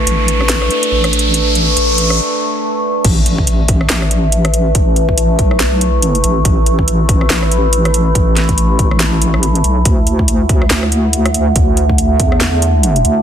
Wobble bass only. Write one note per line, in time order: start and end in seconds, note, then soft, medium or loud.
0.07 0.69 A1 loud
0.92 1.76 A1 medium
1.77 2.20 A1 loud
3.05 3.88 A1 loud
3.90 4.74 A1 loud
4.75 5.37 A1 loud
5.39 6.22 B1 medium
6.24 6.44 A1 loud
6.45 7.29 A1 loud
7.30 8.14 A1 loud
8.15 8.78 A1 loud
8.79 9.63 A1 medium
9.64 9.84 B1 medium
9.86 10.69 D2 loud
10.71 11.54 D2 loud
11.56 12.18 D2 loud
12.20 13.03 E2 medium
13.05 13.22 D2 medium